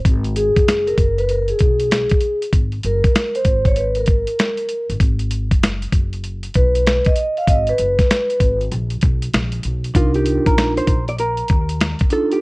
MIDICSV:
0, 0, Header, 1, 5, 480
1, 0, Start_track
1, 0, Tempo, 618557
1, 42, Time_signature, 4, 2, 24, 8
1, 9632, End_track
2, 0, Start_track
2, 0, Title_t, "Vibraphone"
2, 0, Program_c, 0, 11
2, 284, Note_on_c, 0, 68, 96
2, 677, Note_on_c, 0, 70, 90
2, 688, Note_off_c, 0, 68, 0
2, 917, Note_on_c, 0, 71, 93
2, 923, Note_off_c, 0, 70, 0
2, 1004, Note_on_c, 0, 70, 95
2, 1006, Note_off_c, 0, 71, 0
2, 1145, Note_off_c, 0, 70, 0
2, 1158, Note_on_c, 0, 68, 78
2, 1845, Note_off_c, 0, 68, 0
2, 2213, Note_on_c, 0, 70, 88
2, 2603, Note_on_c, 0, 72, 98
2, 2612, Note_off_c, 0, 70, 0
2, 2839, Note_on_c, 0, 73, 101
2, 2846, Note_off_c, 0, 72, 0
2, 2926, Note_on_c, 0, 71, 90
2, 2927, Note_off_c, 0, 73, 0
2, 3080, Note_on_c, 0, 70, 81
2, 3081, Note_off_c, 0, 71, 0
2, 3766, Note_off_c, 0, 70, 0
2, 5086, Note_on_c, 0, 71, 100
2, 5482, Note_on_c, 0, 75, 96
2, 5489, Note_off_c, 0, 71, 0
2, 5702, Note_off_c, 0, 75, 0
2, 5725, Note_on_c, 0, 77, 93
2, 5809, Note_off_c, 0, 77, 0
2, 5813, Note_on_c, 0, 75, 97
2, 5964, Note_off_c, 0, 75, 0
2, 5967, Note_on_c, 0, 71, 86
2, 6650, Note_off_c, 0, 71, 0
2, 7712, Note_on_c, 0, 62, 66
2, 7718, Note_on_c, 0, 63, 62
2, 7724, Note_on_c, 0, 65, 57
2, 7730, Note_on_c, 0, 70, 72
2, 8424, Note_off_c, 0, 62, 0
2, 8427, Note_off_c, 0, 63, 0
2, 8430, Note_off_c, 0, 65, 0
2, 8433, Note_off_c, 0, 70, 0
2, 9391, Note_on_c, 0, 62, 72
2, 9398, Note_on_c, 0, 63, 66
2, 9405, Note_on_c, 0, 65, 66
2, 9410, Note_on_c, 0, 69, 79
2, 9590, Note_off_c, 0, 62, 0
2, 9593, Note_off_c, 0, 63, 0
2, 9596, Note_off_c, 0, 65, 0
2, 9599, Note_off_c, 0, 69, 0
2, 9632, End_track
3, 0, Start_track
3, 0, Title_t, "Hollow-body jazz guitar"
3, 0, Program_c, 1, 26
3, 7731, Note_on_c, 1, 65, 87
3, 7878, Note_off_c, 1, 65, 0
3, 7881, Note_on_c, 1, 67, 77
3, 8122, Note_on_c, 1, 70, 82
3, 8125, Note_off_c, 1, 67, 0
3, 8359, Note_off_c, 1, 70, 0
3, 8362, Note_on_c, 1, 72, 96
3, 8601, Note_off_c, 1, 72, 0
3, 8604, Note_on_c, 1, 74, 95
3, 8685, Note_off_c, 1, 74, 0
3, 8688, Note_on_c, 1, 70, 91
3, 9409, Note_on_c, 1, 69, 85
3, 9427, Note_off_c, 1, 70, 0
3, 9548, Note_off_c, 1, 69, 0
3, 9562, Note_on_c, 1, 67, 77
3, 9632, Note_off_c, 1, 67, 0
3, 9632, End_track
4, 0, Start_track
4, 0, Title_t, "Upright bass"
4, 0, Program_c, 2, 32
4, 42, Note_on_c, 2, 32, 97
4, 375, Note_off_c, 2, 32, 0
4, 440, Note_on_c, 2, 30, 85
4, 715, Note_off_c, 2, 30, 0
4, 759, Note_on_c, 2, 30, 89
4, 1167, Note_off_c, 2, 30, 0
4, 1246, Note_on_c, 2, 35, 91
4, 1578, Note_off_c, 2, 35, 0
4, 1961, Note_on_c, 2, 32, 86
4, 2165, Note_off_c, 2, 32, 0
4, 2204, Note_on_c, 2, 30, 95
4, 2333, Note_off_c, 2, 30, 0
4, 2680, Note_on_c, 2, 32, 91
4, 3283, Note_off_c, 2, 32, 0
4, 3797, Note_on_c, 2, 31, 85
4, 3870, Note_off_c, 2, 31, 0
4, 3882, Note_on_c, 2, 32, 92
4, 4280, Note_off_c, 2, 32, 0
4, 4280, Note_on_c, 2, 30, 85
4, 4555, Note_off_c, 2, 30, 0
4, 4599, Note_on_c, 2, 30, 87
4, 5008, Note_off_c, 2, 30, 0
4, 5086, Note_on_c, 2, 35, 95
4, 5418, Note_off_c, 2, 35, 0
4, 5801, Note_on_c, 2, 32, 90
4, 6005, Note_off_c, 2, 32, 0
4, 6046, Note_on_c, 2, 30, 89
4, 6174, Note_off_c, 2, 30, 0
4, 6520, Note_on_c, 2, 32, 94
4, 6725, Note_off_c, 2, 32, 0
4, 6764, Note_on_c, 2, 34, 103
4, 6967, Note_off_c, 2, 34, 0
4, 7006, Note_on_c, 2, 35, 95
4, 7208, Note_off_c, 2, 35, 0
4, 7246, Note_on_c, 2, 34, 101
4, 7448, Note_off_c, 2, 34, 0
4, 7487, Note_on_c, 2, 35, 93
4, 7688, Note_off_c, 2, 35, 0
4, 7723, Note_on_c, 2, 36, 86
4, 8056, Note_off_c, 2, 36, 0
4, 8121, Note_on_c, 2, 34, 82
4, 8396, Note_off_c, 2, 34, 0
4, 8440, Note_on_c, 2, 34, 85
4, 8848, Note_off_c, 2, 34, 0
4, 8926, Note_on_c, 2, 39, 92
4, 9257, Note_off_c, 2, 39, 0
4, 9632, End_track
5, 0, Start_track
5, 0, Title_t, "Drums"
5, 41, Note_on_c, 9, 36, 108
5, 44, Note_on_c, 9, 42, 75
5, 118, Note_off_c, 9, 36, 0
5, 122, Note_off_c, 9, 42, 0
5, 191, Note_on_c, 9, 42, 41
5, 269, Note_off_c, 9, 42, 0
5, 281, Note_on_c, 9, 42, 79
5, 358, Note_off_c, 9, 42, 0
5, 438, Note_on_c, 9, 42, 50
5, 439, Note_on_c, 9, 36, 90
5, 516, Note_off_c, 9, 42, 0
5, 517, Note_off_c, 9, 36, 0
5, 530, Note_on_c, 9, 42, 94
5, 532, Note_on_c, 9, 38, 102
5, 608, Note_off_c, 9, 42, 0
5, 610, Note_off_c, 9, 38, 0
5, 679, Note_on_c, 9, 42, 48
5, 757, Note_off_c, 9, 42, 0
5, 758, Note_on_c, 9, 36, 89
5, 758, Note_on_c, 9, 42, 76
5, 836, Note_off_c, 9, 36, 0
5, 836, Note_off_c, 9, 42, 0
5, 917, Note_on_c, 9, 42, 41
5, 995, Note_off_c, 9, 42, 0
5, 999, Note_on_c, 9, 42, 60
5, 1076, Note_off_c, 9, 42, 0
5, 1147, Note_on_c, 9, 42, 47
5, 1225, Note_off_c, 9, 42, 0
5, 1232, Note_on_c, 9, 42, 68
5, 1245, Note_on_c, 9, 36, 84
5, 1310, Note_off_c, 9, 42, 0
5, 1322, Note_off_c, 9, 36, 0
5, 1393, Note_on_c, 9, 42, 60
5, 1471, Note_off_c, 9, 42, 0
5, 1484, Note_on_c, 9, 42, 86
5, 1490, Note_on_c, 9, 38, 101
5, 1562, Note_off_c, 9, 42, 0
5, 1568, Note_off_c, 9, 38, 0
5, 1625, Note_on_c, 9, 42, 52
5, 1640, Note_on_c, 9, 36, 94
5, 1703, Note_off_c, 9, 42, 0
5, 1711, Note_on_c, 9, 42, 59
5, 1718, Note_off_c, 9, 36, 0
5, 1789, Note_off_c, 9, 42, 0
5, 1877, Note_on_c, 9, 42, 54
5, 1955, Note_off_c, 9, 42, 0
5, 1960, Note_on_c, 9, 36, 104
5, 1962, Note_on_c, 9, 42, 77
5, 2037, Note_off_c, 9, 36, 0
5, 2039, Note_off_c, 9, 42, 0
5, 2109, Note_on_c, 9, 42, 43
5, 2187, Note_off_c, 9, 42, 0
5, 2197, Note_on_c, 9, 42, 80
5, 2275, Note_off_c, 9, 42, 0
5, 2357, Note_on_c, 9, 42, 53
5, 2358, Note_on_c, 9, 36, 97
5, 2435, Note_off_c, 9, 42, 0
5, 2436, Note_off_c, 9, 36, 0
5, 2446, Note_on_c, 9, 42, 95
5, 2448, Note_on_c, 9, 38, 116
5, 2524, Note_off_c, 9, 42, 0
5, 2526, Note_off_c, 9, 38, 0
5, 2598, Note_on_c, 9, 42, 49
5, 2675, Note_off_c, 9, 42, 0
5, 2675, Note_on_c, 9, 42, 74
5, 2677, Note_on_c, 9, 36, 86
5, 2752, Note_off_c, 9, 42, 0
5, 2755, Note_off_c, 9, 36, 0
5, 2834, Note_on_c, 9, 36, 84
5, 2835, Note_on_c, 9, 42, 43
5, 2911, Note_off_c, 9, 36, 0
5, 2912, Note_off_c, 9, 42, 0
5, 2918, Note_on_c, 9, 42, 66
5, 2995, Note_off_c, 9, 42, 0
5, 3065, Note_on_c, 9, 42, 52
5, 3143, Note_off_c, 9, 42, 0
5, 3151, Note_on_c, 9, 42, 71
5, 3164, Note_on_c, 9, 36, 94
5, 3229, Note_off_c, 9, 42, 0
5, 3242, Note_off_c, 9, 36, 0
5, 3315, Note_on_c, 9, 42, 60
5, 3393, Note_off_c, 9, 42, 0
5, 3408, Note_on_c, 9, 42, 83
5, 3413, Note_on_c, 9, 38, 103
5, 3485, Note_off_c, 9, 42, 0
5, 3491, Note_off_c, 9, 38, 0
5, 3548, Note_on_c, 9, 42, 48
5, 3626, Note_off_c, 9, 42, 0
5, 3636, Note_on_c, 9, 42, 68
5, 3713, Note_off_c, 9, 42, 0
5, 3798, Note_on_c, 9, 42, 49
5, 3876, Note_off_c, 9, 42, 0
5, 3880, Note_on_c, 9, 36, 100
5, 3884, Note_on_c, 9, 42, 76
5, 3957, Note_off_c, 9, 36, 0
5, 3961, Note_off_c, 9, 42, 0
5, 4029, Note_on_c, 9, 42, 47
5, 4107, Note_off_c, 9, 42, 0
5, 4119, Note_on_c, 9, 42, 84
5, 4197, Note_off_c, 9, 42, 0
5, 4278, Note_on_c, 9, 36, 86
5, 4279, Note_on_c, 9, 42, 53
5, 4356, Note_off_c, 9, 36, 0
5, 4356, Note_off_c, 9, 42, 0
5, 4371, Note_on_c, 9, 42, 96
5, 4373, Note_on_c, 9, 38, 111
5, 4449, Note_off_c, 9, 42, 0
5, 4451, Note_off_c, 9, 38, 0
5, 4518, Note_on_c, 9, 42, 48
5, 4596, Note_off_c, 9, 42, 0
5, 4598, Note_on_c, 9, 36, 90
5, 4599, Note_on_c, 9, 42, 79
5, 4675, Note_off_c, 9, 36, 0
5, 4676, Note_off_c, 9, 42, 0
5, 4756, Note_on_c, 9, 42, 44
5, 4834, Note_off_c, 9, 42, 0
5, 4840, Note_on_c, 9, 42, 63
5, 4917, Note_off_c, 9, 42, 0
5, 4988, Note_on_c, 9, 42, 51
5, 5066, Note_off_c, 9, 42, 0
5, 5075, Note_on_c, 9, 42, 75
5, 5085, Note_on_c, 9, 36, 88
5, 5153, Note_off_c, 9, 42, 0
5, 5163, Note_off_c, 9, 36, 0
5, 5238, Note_on_c, 9, 42, 58
5, 5316, Note_off_c, 9, 42, 0
5, 5327, Note_on_c, 9, 42, 91
5, 5333, Note_on_c, 9, 38, 100
5, 5405, Note_off_c, 9, 42, 0
5, 5410, Note_off_c, 9, 38, 0
5, 5468, Note_on_c, 9, 42, 47
5, 5481, Note_on_c, 9, 36, 94
5, 5545, Note_off_c, 9, 42, 0
5, 5553, Note_on_c, 9, 42, 66
5, 5559, Note_off_c, 9, 36, 0
5, 5631, Note_off_c, 9, 42, 0
5, 5719, Note_on_c, 9, 42, 52
5, 5797, Note_off_c, 9, 42, 0
5, 5800, Note_on_c, 9, 36, 99
5, 5803, Note_on_c, 9, 42, 82
5, 5877, Note_off_c, 9, 36, 0
5, 5881, Note_off_c, 9, 42, 0
5, 5951, Note_on_c, 9, 42, 47
5, 6028, Note_off_c, 9, 42, 0
5, 6038, Note_on_c, 9, 42, 77
5, 6116, Note_off_c, 9, 42, 0
5, 6198, Note_on_c, 9, 42, 58
5, 6199, Note_on_c, 9, 36, 89
5, 6208, Note_on_c, 9, 38, 36
5, 6276, Note_off_c, 9, 36, 0
5, 6276, Note_off_c, 9, 42, 0
5, 6286, Note_off_c, 9, 38, 0
5, 6290, Note_on_c, 9, 42, 91
5, 6292, Note_on_c, 9, 38, 105
5, 6368, Note_off_c, 9, 42, 0
5, 6370, Note_off_c, 9, 38, 0
5, 6439, Note_on_c, 9, 42, 48
5, 6517, Note_off_c, 9, 42, 0
5, 6519, Note_on_c, 9, 36, 85
5, 6521, Note_on_c, 9, 42, 72
5, 6597, Note_off_c, 9, 36, 0
5, 6599, Note_off_c, 9, 42, 0
5, 6680, Note_on_c, 9, 42, 37
5, 6758, Note_off_c, 9, 42, 0
5, 6763, Note_on_c, 9, 42, 59
5, 6841, Note_off_c, 9, 42, 0
5, 6909, Note_on_c, 9, 42, 49
5, 6987, Note_off_c, 9, 42, 0
5, 6995, Note_on_c, 9, 42, 69
5, 7006, Note_on_c, 9, 36, 94
5, 7073, Note_off_c, 9, 42, 0
5, 7084, Note_off_c, 9, 36, 0
5, 7157, Note_on_c, 9, 42, 60
5, 7235, Note_off_c, 9, 42, 0
5, 7245, Note_on_c, 9, 42, 88
5, 7251, Note_on_c, 9, 38, 102
5, 7323, Note_off_c, 9, 42, 0
5, 7328, Note_off_c, 9, 38, 0
5, 7387, Note_on_c, 9, 42, 57
5, 7465, Note_off_c, 9, 42, 0
5, 7475, Note_on_c, 9, 42, 70
5, 7552, Note_off_c, 9, 42, 0
5, 7638, Note_on_c, 9, 42, 53
5, 7716, Note_off_c, 9, 42, 0
5, 7720, Note_on_c, 9, 36, 107
5, 7723, Note_on_c, 9, 42, 79
5, 7798, Note_off_c, 9, 36, 0
5, 7801, Note_off_c, 9, 42, 0
5, 7872, Note_on_c, 9, 42, 41
5, 7949, Note_off_c, 9, 42, 0
5, 7960, Note_on_c, 9, 42, 84
5, 8037, Note_off_c, 9, 42, 0
5, 8118, Note_on_c, 9, 42, 48
5, 8119, Note_on_c, 9, 36, 93
5, 8196, Note_off_c, 9, 42, 0
5, 8197, Note_off_c, 9, 36, 0
5, 8209, Note_on_c, 9, 42, 94
5, 8211, Note_on_c, 9, 38, 98
5, 8287, Note_off_c, 9, 42, 0
5, 8289, Note_off_c, 9, 38, 0
5, 8359, Note_on_c, 9, 42, 50
5, 8437, Note_off_c, 9, 42, 0
5, 8438, Note_on_c, 9, 36, 85
5, 8438, Note_on_c, 9, 42, 75
5, 8515, Note_off_c, 9, 42, 0
5, 8516, Note_off_c, 9, 36, 0
5, 8598, Note_on_c, 9, 42, 38
5, 8676, Note_off_c, 9, 42, 0
5, 8679, Note_on_c, 9, 42, 59
5, 8757, Note_off_c, 9, 42, 0
5, 8826, Note_on_c, 9, 42, 45
5, 8903, Note_off_c, 9, 42, 0
5, 8911, Note_on_c, 9, 42, 66
5, 8924, Note_on_c, 9, 36, 97
5, 8989, Note_off_c, 9, 42, 0
5, 9002, Note_off_c, 9, 36, 0
5, 9073, Note_on_c, 9, 42, 53
5, 9151, Note_off_c, 9, 42, 0
5, 9162, Note_on_c, 9, 42, 82
5, 9168, Note_on_c, 9, 38, 98
5, 9240, Note_off_c, 9, 42, 0
5, 9246, Note_off_c, 9, 38, 0
5, 9305, Note_on_c, 9, 42, 49
5, 9320, Note_on_c, 9, 36, 98
5, 9383, Note_off_c, 9, 42, 0
5, 9391, Note_on_c, 9, 42, 62
5, 9397, Note_off_c, 9, 36, 0
5, 9468, Note_off_c, 9, 42, 0
5, 9555, Note_on_c, 9, 42, 48
5, 9632, Note_off_c, 9, 42, 0
5, 9632, End_track
0, 0, End_of_file